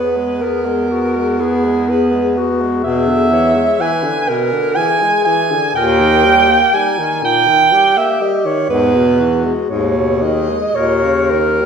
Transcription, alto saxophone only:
0, 0, Header, 1, 2, 480
1, 0, Start_track
1, 0, Tempo, 967742
1, 1411, Time_signature, 3, 2, 24, 8
1, 2367, Tempo, 980392
1, 4287, Tempo, 995025
1, 4767, Tempo, 1063830
1, 5247, Tempo, 1142857
1, 5626, End_track
2, 0, Start_track
2, 0, Title_t, "Alto saxophone"
2, 0, Program_c, 0, 65
2, 0, Note_on_c, 0, 71, 90
2, 206, Note_on_c, 0, 70, 81
2, 214, Note_off_c, 0, 71, 0
2, 696, Note_on_c, 0, 68, 93
2, 703, Note_off_c, 0, 70, 0
2, 939, Note_on_c, 0, 71, 86
2, 946, Note_off_c, 0, 68, 0
2, 1176, Note_off_c, 0, 71, 0
2, 1407, Note_on_c, 0, 76, 102
2, 1890, Note_on_c, 0, 80, 89
2, 1898, Note_off_c, 0, 76, 0
2, 2126, Note_on_c, 0, 70, 107
2, 2133, Note_off_c, 0, 80, 0
2, 2361, Note_on_c, 0, 80, 114
2, 2368, Note_off_c, 0, 70, 0
2, 2596, Note_off_c, 0, 80, 0
2, 2599, Note_on_c, 0, 80, 101
2, 2842, Note_off_c, 0, 80, 0
2, 2847, Note_on_c, 0, 79, 108
2, 3332, Note_on_c, 0, 80, 100
2, 3339, Note_off_c, 0, 79, 0
2, 3575, Note_off_c, 0, 80, 0
2, 3578, Note_on_c, 0, 79, 115
2, 3935, Note_on_c, 0, 76, 94
2, 3942, Note_off_c, 0, 79, 0
2, 4053, Note_on_c, 0, 75, 91
2, 4061, Note_off_c, 0, 76, 0
2, 4174, Note_on_c, 0, 73, 92
2, 4181, Note_off_c, 0, 75, 0
2, 4287, Note_off_c, 0, 73, 0
2, 4290, Note_on_c, 0, 71, 107
2, 4627, Note_off_c, 0, 71, 0
2, 4771, Note_on_c, 0, 73, 80
2, 5006, Note_on_c, 0, 75, 94
2, 5012, Note_off_c, 0, 73, 0
2, 5246, Note_on_c, 0, 73, 105
2, 5253, Note_off_c, 0, 75, 0
2, 5477, Note_on_c, 0, 70, 90
2, 5484, Note_off_c, 0, 73, 0
2, 5626, Note_off_c, 0, 70, 0
2, 5626, End_track
0, 0, End_of_file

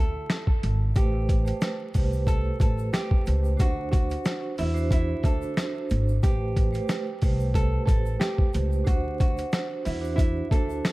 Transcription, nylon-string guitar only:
0, 0, Header, 1, 2, 480
1, 0, Start_track
1, 0, Tempo, 659341
1, 697, Time_signature, 4, 2, 24, 8
1, 7951, End_track
2, 0, Start_track
2, 0, Title_t, "Nylon-string guitar"
2, 0, Program_c, 0, 24
2, 0, Note_on_c, 0, 69, 81
2, 328, Note_off_c, 0, 69, 0
2, 702, Note_on_c, 0, 67, 96
2, 1283, Note_off_c, 0, 67, 0
2, 1654, Note_on_c, 0, 69, 96
2, 1871, Note_off_c, 0, 69, 0
2, 1907, Note_on_c, 0, 69, 72
2, 2119, Note_off_c, 0, 69, 0
2, 2132, Note_on_c, 0, 67, 90
2, 2351, Note_off_c, 0, 67, 0
2, 2625, Note_on_c, 0, 66, 97
2, 2838, Note_off_c, 0, 66, 0
2, 2850, Note_on_c, 0, 66, 78
2, 3305, Note_off_c, 0, 66, 0
2, 3338, Note_on_c, 0, 64, 76
2, 3554, Note_off_c, 0, 64, 0
2, 3582, Note_on_c, 0, 64, 87
2, 3796, Note_off_c, 0, 64, 0
2, 3823, Note_on_c, 0, 69, 80
2, 4171, Note_off_c, 0, 69, 0
2, 4535, Note_on_c, 0, 67, 98
2, 5120, Note_off_c, 0, 67, 0
2, 5496, Note_on_c, 0, 69, 93
2, 5709, Note_off_c, 0, 69, 0
2, 5718, Note_on_c, 0, 69, 77
2, 5943, Note_off_c, 0, 69, 0
2, 5966, Note_on_c, 0, 67, 83
2, 6187, Note_off_c, 0, 67, 0
2, 6454, Note_on_c, 0, 66, 94
2, 6672, Note_off_c, 0, 66, 0
2, 6699, Note_on_c, 0, 66, 84
2, 7150, Note_off_c, 0, 66, 0
2, 7173, Note_on_c, 0, 64, 80
2, 7386, Note_off_c, 0, 64, 0
2, 7395, Note_on_c, 0, 64, 87
2, 7621, Note_off_c, 0, 64, 0
2, 7655, Note_on_c, 0, 69, 83
2, 7951, Note_off_c, 0, 69, 0
2, 7951, End_track
0, 0, End_of_file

